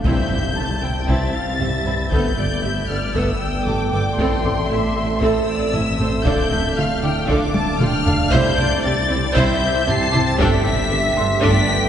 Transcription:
0.04 C2 C3 E3 G3 C4 E4 C5 E5 G6, taiko, impact
0.29 C2 C3 C4 E4, taiko low-mid
0.55 C2 C3 G3 C4 A5
0.81 C2 C3 C4 E4 G5
1.07 C2 C3 E3 C4 E4 E5 A6, taiko
1.34 F5
1.59 C2 C3 G3 C4 E5, taiko low-mid
1.85 C2 C3 C4 E4 B4 B5, taiko low-mid
2.11 G1 G2 A3 B3 A4 B4 D5 G6, taiko
2.37 G1 G2 B3 A4 D5, taiko low-mid
2.63 G1 G2 A3 G4 E5
2.89 G1 G2 B3 A4 D5 F6
3.15 G1 G2 A3 B3 A4 B4 E6, taiko
3.42 G5
3.65 G1 G2 A3 G4 A5 D6, taiko low-mid
3.92 G1 G2 B3 A4 D6, taiko low-mid
4.18 A1 A2 A3 C4 E4 A4 E5 C6, taiko
4.44 A1 A2 C4 A4 D5 D6, taiko low-mid
4.70 A1 A2 A3 E4 E5
4.95 A1 A2 C4 A4
5.21 A1 A2 A3 C4 E4 A4 C5 E6, taiko
5.48 D5
5.73 A1 A2 A3 E4 E5, taiko low-mid
5.99 A1 A2 C4 A4 C5, taiko low-mid
6.25 D1 D2 D3 A3 D4 F4 A4 D5 G6, taiko
6.51 D2 D3 D4 A4 E5, taiko low-mid
6.77 D2 D3 A3 F4 F5 F6
7.02 D2 D3 D4 E4 A4 G5 D6
7.28 D2 D3 A3 D4 F4 A4 F5 D6, taiko
7.54 A5, taiko high
7.80 D2 D3 A3 F4 G5 F6, taiko mid
8.05 D2 D3 D4 A4 F5 A5, taiko low
8.31 C2 C3 G3 C4 E4 G4 C5 E5 G6, taiko
8.57 C2 C3 E4 C5 D5, taiko low-mid
8.84 C2 C3 C4 G4 A6
9.09 C2 C3 E4 C5
9.34 C2 C3 G3 E4 C5 E5 G6, taiko
9.87 C2 C3 C4 G4 A5 C7, taiko low-mid
10.12 C2 C3 E4 C5 D6, taiko low-mid
10.28 A6
10.39 G1 G2 A3 B3 D4 A4 G5 B6, taiko
10.64 G1 G2 D4 A4 E5, taiko low-mid
10.91 G1 G2 B3 G4
11.17 G1 G2 D4 A4 C6
11.42 G1 G2 A3 D4 A4 D5 B6, taiko
11.68 G5

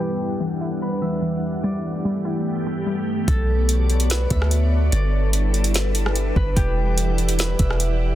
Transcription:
Already playing: G3 B4 D5
0.00 E2 E3 D4 G4 F#5
0.40 E3
0.61 E4
0.82 B4
1.02 E3 E5
1.22 E3
1.63 G2 G3 A3 B3 G4 D5
2.05 G3
2.25 E4
2.67 G3
2.86 G3
3.28 B1 B3 F#4 A4 C#5 D5, kick, closed hi-hat
3.69 closed hi-hat
3.90 closed hi-hat
4.00 closed hi-hat
4.10 B4, snare, closed hi-hat
4.30 D2 E5, kick, closed hi-hat
4.42 cross-stick
4.51 closed hi-hat
4.92 G1 G3 D4 E4 A4 B4 D5, closed hi-hat
5.33 closed hi-hat
5.54 closed hi-hat
5.64 closed hi-hat
5.74 snare, closed hi-hat
5.95 closed hi-hat
6.06 cross-stick
6.16 closed hi-hat
6.36 G1 B4, kick
6.56 E1 E3 E4 G4 D5 F#5, kick, closed hi-hat
6.98 closed hi-hat
7.18 closed hi-hat
7.29 closed hi-hat
7.39 B4, snare, closed hi-hat
7.59 E1 E5, kick, closed hi-hat
7.71 cross-stick
7.80 closed hi-hat

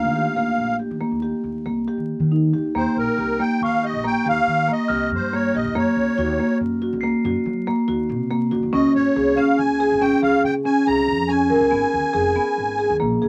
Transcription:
Already playing: F5
0.04 D#3
0.16 G4
0.36 D#2 A#3
0.58 A#1
0.79 G4
0.91 D#3
1.01 A#3
1.11 D#2
1.22 G4
1.44 D#2
1.66 C2 A#3
1.88 G4
1.97 D#3
2.20 D#3
2.32 D#4
2.53 D#2 G4
2.75 D#2 A#3 C5 G5
2.96 A#1 A#4
3.17 C2 G4
3.39 A#3 G5
3.61 D#2 F5 C#6
3.83 G4 D#5
3.93 A#1
4.04 A#3 G5
4.25 D#2 G4 F5
4.47 D#3
4.68 A#3
4.72 D#5
4.88 C2 G4 F6
5.04 A#6
5.11 G2
5.15 C5
5.33 A#3 C#5
5.54 A#1 G4 D#5
5.65 D#2
5.75 F#2 A#3 C#5
5.96 C#2
6.18 D#2 F#4
6.40 A#3
6.60 F#2
6.82 F#4
6.93 C#2
7.01 A#3 C7
7.24 F#2 F#4
7.46 F#3
7.67 A#3
7.88 D#2 F#4
8.09 C3
8.31 A#3
8.51 C#2 F#4
8.63 D#2
8.73 C#2 C#4 D#5
8.95 G#1 C#5
9.16 C2 G#4
9.37 C#4 F5
9.58 C#2 G#5
9.80 G#4
9.92 G#1
10.01 C#4 G5
10.23 C#2 G#4 F5
10.44 C#3 G5
10.65 C#4 G#5
10.87 C2 G#4 A#5
11.08 F2
11.28 C#4 G#5
11.50 G#1 A#4
11.61 C2
11.71 G#1 B3
11.94 D#2
12.13 F1 G#4
12.36 B3
12.58 G#1
12.79 G#4
12.90 D#2
13.00 A#1 A#3
13.22 A#1 G#4

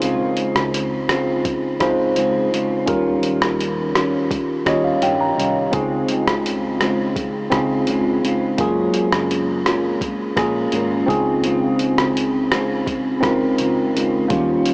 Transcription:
Already playing: C#2 D#4 F4 G#4 C5
0.02 C#3 G#3 C4 F4, closed hi-hat
0.37 closed hi-hat
0.56 C#2, cross-stick
0.74 closed hi-hat
1.09 C#3 G#3 C4 F4, cross-stick, closed hi-hat
1.45 kick, closed hi-hat
1.80 C#2 C#3 G#3 C4 D#4 F4 G#4 C5, kick, cross-stick, closed hi-hat
2.16 C#3 G#3 C4 F4, closed hi-hat
2.52 C#3 G#3 C4 F4, closed hi-hat
2.86 D#2 D#3 G3 C#4 F4 G4 A#4, kick, closed hi-hat
3.23 closed hi-hat
3.42 D#2, cross-stick
3.61 closed hi-hat
3.95 D#3 G3 C#4 F4, cross-stick, closed hi-hat
4.31 kick, closed hi-hat
4.66 D#2 D#3 G3 C#4 F4 G4 C#5 D#5, kick, cross-stick, closed hi-hat
4.84 F5
5.02 G2 D#3 G3 C#4 F4 G5, closed hi-hat
5.21 A#5
5.38 C2 D#3 G3 C#4 F4, closed hi-hat
5.72 C#2 C#3 G#3 C4 D#4 F4 G#4, kick, closed hi-hat
6.08 closed hi-hat
6.27 C#2, cross-stick
6.46 closed hi-hat
6.80 C#3 G#3 C4 F4, cross-stick, closed hi-hat
7.16 kick, closed hi-hat
7.50 C#2 C#3 G#3 C4 D#4 F4 G#4, kick, cross-stick, closed hi-hat
7.87 C#3 G#3 C4 F4, closed hi-hat
8.23 C#3 G#3 C4 F4, closed hi-hat
8.58 F#1 F#3 G#3 A#3 C#4 F4 G#4 A#4, kick, closed hi-hat
8.94 closed hi-hat
9.12 F#1, cross-stick
9.31 closed hi-hat
9.65 G#3 C#4 F4 A#4, cross-stick, closed hi-hat
10.01 kick, closed hi-hat
10.36 A#1 G#3 A#3 C#4 F4 G#4 A#4, kick, cross-stick, closed hi-hat
10.72 G#1 G#3 C#4 F4 A#4, closed hi-hat
11.06 C#2 C#3 G#3 C4 D#4 F4 G#4, kick, closed hi-hat
11.11 F4
11.44 C#3 G#3 C4 F4, closed hi-hat
11.79 closed hi-hat
11.97 C#2, cross-stick
12.17 closed hi-hat
12.52 C#3 G#3 C4 F4, cross-stick, closed hi-hat
12.87 kick, closed hi-hat
13.21 C#2 C#3 G#3 C4 D#4 F4 A#4, kick, cross-stick, closed hi-hat
13.25 C4 F4
13.58 C#3 G#3 C4 F4, closed hi-hat
13.95 C#3 G#3 C4 F4, closed hi-hat
14.28 D#2 D#3 G3 A#3 C#4 F4 G4, kick, closed hi-hat
14.32 F4
14.66 closed hi-hat

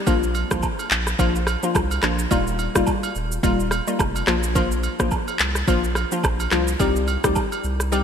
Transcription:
0.07 A#1 F3 A#3 D4 F4, kick, high agogo, shaker
0.23 shaker
0.35 high agogo, shaker
0.51 C2 F3 A#3 D4 F4, kick, cross-stick, shaker
0.63 kick, low woodblock, shaker
0.79 high agogo, shaker
0.91 A#1, clap, shaker
1.07 cross-stick, shaker
1.19 A#1 F3 A#3 D4 F4, kick, high agogo, shaker
1.35 shaker
1.47 cross-stick, high agogo, shaker
1.63 F3 A#3 D4 F4, shaker
1.75 C2, kick, cross-stick, low woodblock, shaker
1.91 high agogo, shaker
2.03 A#1 F3 A#3 D4 F4, cross-stick, clap, shaker
2.19 shaker
2.31 D#1 G3 A#3 D#4 F4, kick, high agogo, shaker
2.47 shaker
2.59 high agogo, shaker
2.75 F1 G3 A#3 D#4 F4, kick, cross-stick, shaker
2.87 kick, low woodblock, shaker
3.03 high agogo, shaker
3.15 D#1, shaker
3.32 shaker
3.43 D#1 G3 A#3 D#4 F4, kick, high agogo, shaker
3.60 shaker
3.71 cross-stick, high agogo, shaker
3.87 G3 A#3 D#4 F4, shaker
3.99 F1, kick, cross-stick, low woodblock, shaker
4.16 high agogo, shaker
4.27 A#1 F3 A#3 D4 F4, cross-stick, clap, shaker
4.43 shaker
4.55 F3 A#3 D4 F4, kick, high agogo, shaker
4.72 shaker
4.83 high agogo, shaker
5.00 A#1 F3 A#3 D4 F4, kick, cross-stick, shaker
5.11 kick, low woodblock, shaker
5.28 high agogo, shaker
5.39 C2, clap, shaker
5.55 cross-stick, shaker
5.67 A#1 F3 A#3 D4 F4, kick, high agogo, shaker
5.84 shaker
5.95 cross-stick, high agogo, shaker
6.12 F3 A#3 D4 F4, shaker
6.23 A#1, kick, cross-stick, low woodblock, shaker
6.40 high agogo, shaker
6.51 C2 F3 A#3 D4 F4, cross-stick, clap, shaker
6.68 shaker
6.80 C2 G3 C4 D#4 G4, kick, high agogo, shaker
6.96 shaker
7.08 high agogo, shaker
7.24 D2 G3 C4 D#4 G4, kick, cross-stick, shaker
7.35 kick, low woodblock, shaker
7.52 high agogo, shaker
7.64 C2, shaker
7.80 cross-stick, shaker
7.92 G3 C4 D#4 G4, high agogo, shaker

